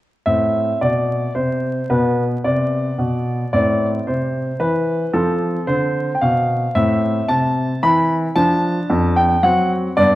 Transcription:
0.26 0.71 A2 soft
0.26 1.86 C4 soft
0.26 0.77 E5 medium
0.81 1.25 B2 soft
0.81 1.32 D5 medium
1.35 1.79 C3 soft
1.35 1.86 C5 medium
1.90 2.34 B2 soft
1.90 3.50 B3 soft
1.90 2.23 B4 medium
2.44 2.88 C3 soft
2.44 3.50 D5 medium
2.98 3.43 B2 soft
3.53 3.97 A2 medium
3.53 5.10 C4 soft
3.53 3.86 D5 medium
4.07 4.50 C3 soft
4.07 4.61 C5 medium
4.60 5.03 E3 soft
4.60 5.10 B4 medium
5.13 5.57 F3 medium
5.13 6.72 C4 soft
5.13 5.64 A4 medium
5.67 6.11 D3 soft
5.67 6.11 C5 medium
6.15 6.22 G5 medium
6.21 6.65 B2 soft
6.21 6.72 F5 medium
6.75 7.19 A2 medium
6.75 8.32 C4 soft
6.75 7.29 E5 medium
7.29 7.72 C3 medium
7.29 7.83 A5 medium
7.83 8.26 E3 medium
7.83 8.15 B5 medium
8.36 8.79 F3 medium
8.36 9.39 D4 soft
8.36 9.16 A5 medium
8.90 9.33 F2 medium
9.16 9.43 G5 medium
9.43 9.86 F#3 medium
9.43 9.93 C4 soft
9.43 9.70 F#5 medium
9.97 10.15 G2 medium
9.97 10.15 B3 soft
9.97 10.15 D5 medium

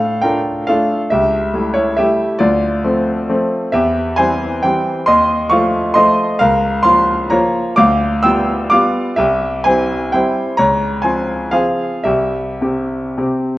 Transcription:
0.00 0.23 A2 medium
0.00 0.21 A4 medium
0.00 0.23 F5 medium
0.22 0.65 A3 soft
0.22 0.65 D4 soft
0.22 0.65 F4 soft
0.22 0.66 A#4 medium
0.22 0.68 G5 medium
0.67 1.08 A3 soft
0.67 1.08 D4 soft
0.67 1.08 F4 soft
0.67 1.08 A4 medium
0.67 1.11 F5 medium
1.10 1.52 C#2 medium
1.10 1.71 G4 medium
1.10 1.75 E5 medium
1.53 1.93 G3 soft
1.53 1.93 A3 soft
1.53 1.73 E4 soft
1.73 1.96 E4 medium
1.73 1.96 C#5 medium
1.96 2.37 G3 soft
1.96 2.37 A3 soft
1.96 2.37 E4 medium
1.96 2.37 G4 medium
1.96 2.40 E5 medium
2.39 2.82 D2 medium
2.39 3.47 F4 medium
2.39 3.50 D5 medium
2.84 3.25 F3 soft
2.84 3.25 A3 soft
2.84 3.26 C4 medium
3.29 3.69 F3 medium
3.29 3.69 A3 soft
3.29 3.69 C4 medium
3.72 4.17 E2 medium
3.72 4.15 G4 medium
3.72 4.18 E5 medium
4.17 4.60 E3 soft
4.17 4.60 G3 soft
4.17 4.61 C4 soft
4.17 4.61 C5 medium
4.17 4.63 G#5 medium
4.63 5.03 E3 medium
4.63 5.04 G3 medium
4.63 5.04 C4 medium
4.63 5.04 C5 medium
4.63 5.07 G5 medium
5.06 5.49 D#2 medium
5.06 5.47 D#5 medium
5.06 5.50 C6 loud
5.49 5.92 F3 medium
5.49 5.92 A3 medium
5.49 5.92 F4 medium
5.49 5.93 F5 medium
5.49 5.95 C#6 medium
5.94 6.37 F3 medium
5.94 6.37 A3 medium
5.94 6.38 F4 medium
5.94 6.38 D#5 medium
5.94 6.40 C6 loud
6.39 6.83 C#2 medium
6.39 6.81 A#4 medium
6.39 6.82 F5 medium
6.83 7.27 F3 soft
6.83 7.28 A#3 medium
6.83 7.28 F4 medium
6.83 7.28 F5 medium
6.83 7.31 C6 loud
7.30 7.74 F3 medium
7.30 7.74 A#3 medium
7.30 7.74 F4 medium
7.30 7.75 C#5 medium
7.30 7.77 A#5 medium
7.76 8.23 D2 medium
7.76 8.20 F5 medium
7.76 8.23 D6 loud
8.23 8.67 G3 medium
8.23 8.68 B3 medium
8.23 8.68 F4 medium
8.23 8.68 G5 medium
8.23 8.71 E6 medium
8.70 9.14 G3 medium
8.70 9.14 B3 medium
8.70 9.14 F4 medium
8.70 9.15 F5 medium
8.70 9.17 D6 medium
9.17 9.64 C2 medium
9.17 9.62 G4 medium
9.17 9.65 E5 medium
9.64 10.09 G3 soft
9.64 10.10 C4 soft
9.64 10.10 E4 soft
9.64 10.10 C5 medium
9.64 10.13 G#5 medium
10.12 10.55 G3 medium
10.12 10.55 C4 medium
10.12 10.55 E4 medium
10.12 10.55 C5 medium
10.12 10.58 G5 medium
10.57 11.02 C#2 medium
10.57 11.00 C#5 medium
10.57 11.03 A#5 medium
11.02 11.49 F3 soft
11.02 11.49 C4 soft
11.02 11.49 F4 soft
11.02 11.49 C5 medium
11.02 11.52 G#5 medium
11.52 12.02 F3 soft
11.52 12.02 C4 soft
11.52 12.02 F4 soft
11.52 12.02 G#4 medium
11.52 12.05 F5 medium
12.04 12.59 C2 medium
12.04 12.60 G4 medium
12.04 13.58 E5 medium
12.61 13.14 C3 soft
12.61 13.14 C4 soft
12.61 13.14 G4 soft
13.18 13.58 C3 soft
13.18 13.58 C4 soft
13.18 13.58 G4 medium

